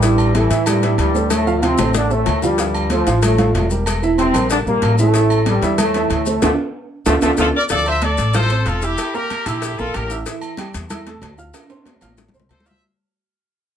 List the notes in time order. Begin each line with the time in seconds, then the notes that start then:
Already playing: A1 G2 G3
0.02 E3 E4 E5, cowbell, high conga, maracas
0.18 high conga, low agogo, maracas
0.35 E3 G3 E4 G4 A4, cowbell, high conga, low agogo, maracas
0.50 A2 E3 E4 E5, cowbell, maracas
0.66 G2 G3, cowbell, high conga, low conga, low agogo, maracas
0.83 E3 E4 E5, cowbell, high conga, maracas
0.98 D2 G2 G3, cowbell, high conga, low agogo, maracas
1.14 A3 A4 C5, maracas
1.30 A2 A3, cowbell, high bongo, high conga, low agogo, maracas
1.46 F3 F4 F5, high conga, maracas
1.62 C3 F3 C4 F4 F5, cowbell, high conga, low agogo, maracas
1.78 A1 A3 A4 C5, cowbell, low bongo, low agogo, maracas
1.94 D3 D4, cowbell, low bongo, maracas
2.10 A2 A3 A4 C5, high conga, maracas
2.26 D2, cowbell, low bongo, high conga, low agogo, maracas
2.42 G2 F3 G3 F4 F5, low bongo, high conga, maracas
2.58 F3 F4 F5, cowbell, high conga, maracas
2.75 high conga, low agogo, maracas
2.90 F3 A3 F4 A4 C5, cowbell, high conga, low agogo, maracas
3.06 A1 F3 F4 F5, cowbell, maracas
3.22 A2 A3, cowbell, high conga, low conga, low agogo, maracas
3.38 F3 F4 F5, cowbell, high conga, low conga, maracas
3.53 E1 A2 A3, cowbell, high conga, low timbale, low agogo, maracas
3.69 G3 G4 A#4, high conga, maracas
3.85 cowbell, high conga, low agogo, maracas
4.02 E3 E4 E5, high conga, maracas
4.18 C3 E3 C4 E4 E5, cowbell, high conga, low agogo, maracas
4.33 A#1 G3 G4 A#4, cowbell, low agogo, maracas
4.50 D3 D4, cowbell, high conga, maracas
4.66 A#1 A#2 G3 A#3 G4 A#4, maracas
4.82 A1, cowbell, high conga, low timbale, low agogo, maracas
4.98 A2 E3 A3 E4 E5, high conga, maracas
5.14 E3 E4 E5, cowbell, high conga, maracas
5.30 high conga, low agogo, maracas
5.46 G2 G3 G4 A4, cowbell, high conga, low agogo, maracas
5.62 E2 E3 E4 E5, cowbell, maracas
5.78 A2 A3, cowbell, high conga, low conga, low agogo, maracas
5.94 E3 E4 E5, cowbell, high conga, maracas
6.10 D2 A2 A3, cowbell, high conga, low agogo, maracas
6.26 A3 A4 C5, high conga, maracas
6.42 D2 D3 F3 A3 D4 F4 A4, cowbell, high conga, high timbale, maracas
7.06 D2 D3 F3 A3 D4 F4 A4, cowbell, high conga, high timbale, maracas
7.22 D2 D3 F3 A3 D4 F4 A4, cowbell, high conga, high timbale, maracas
7.37 D2 D3 F3 A3 D4 F4 A4, cowbell, high conga, high timbale, maracas
7.41 A4
7.56 A#4 D5
7.69 D2 F3 F4 A4 D5 F5, cowbell, high conga, maracas
7.85 C5 E5, high conga, low agogo, maracas
8.01 A3 A4 D5 A5, cowbell, high conga, low agogo, maracas
8.18 A1, cowbell, maracas
8.34 F4 A4 C5 F5 F6, cowbell, high conga, low conga, low agogo, maracas
8.50 C4 C5 C6, cowbell, high conga, maracas
8.66 E1 F4 A4, cowbell, high conga, low agogo, maracas
8.82 E4 G4 E5 E6, high conga, maracas
8.98 cowbell, high conga, low agogo, maracas
9.14 A#3 G4 A#4 A#5, high conga, maracas
9.30 cowbell, high conga, low agogo, maracas
9.46 A#1 E4 G4 E5 E6, cowbell, low agogo, maracas
9.62 cowbell, high conga, maracas
9.78 A#1 A#3 F4 A4 A#4 A#5, high conga, maracas
9.94 A1 G4 A#4, cowbell, high conga, low agogo, maracas
10.10 E4 E5 E6, high conga, maracas
10.26 E3 E4 E5, cowbell, high conga, maracas
10.41 high conga, low agogo, maracas
10.57 G3 G4 G5, cowbell, high conga, low agogo, maracas
10.74 E2, cowbell, maracas
10.90 E4 E5 E6, cowbell, high conga, low conga, low agogo, maracas
11.06 A3 A4 A5, cowbell, high conga, maracas
11.21 D2, cowbell, high conga, low timbale, low agogo, maracas
11.38 F4 F5 F6, high conga, maracas
11.54 cowbell, high conga, high timbale, low agogo, maracas
11.70 C4 C5 C6, high conga, high timbale, maracas
11.85 cowbell, high conga, low timbale, low agogo, maracas
11.96 high conga
12.01 A1 F4 F5 F6, cowbell, low timbale, low agogo, maracas
12.07 high conga
12.17 cowbell, high bongo, high conga, low timbale, maracas
12.28 high bongo, low conga
12.34 C2 C4 C5 C6, maracas
12.40 low bongo, low conga
12.49 D2 A4 C5, cowbell, low bongo, low timbale, low agogo, maracas
12.60 low conga
12.65 F4 C5 E5 F5 F6, low timbale, maracas
12.71 low bongo, low conga